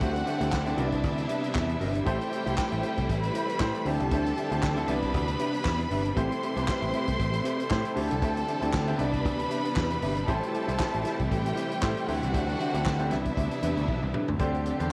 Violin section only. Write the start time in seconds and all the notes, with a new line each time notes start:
Already playing: F#4 F#5
0.79 E4 E5
2.06 G4 G5
3.10 B4 B5
3.86 A4 A5
4.88 B4 B5
6.17 C5 C6
7.97 A4 A5
8.99 B4 B5
10.28 A4 A5
11.31 G4 G5
12.08 F#4 F#5
13.11 E4 E5